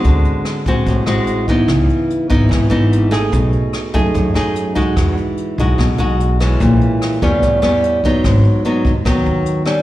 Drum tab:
HH |xxxxxxxx|xxxxxxxx|xxxxxxxx|xxxxxxxx|
SD |--r--r--|r---r--r|--r--r--|r---r--r|
BD |o--oo--o|o--oo---|o--oo--o|o--oo---|

HH |xxxxxxxx|xxxxxxxx|
SD |--r--r--|r---r--r|
BD |o--oo--o|o--oo---|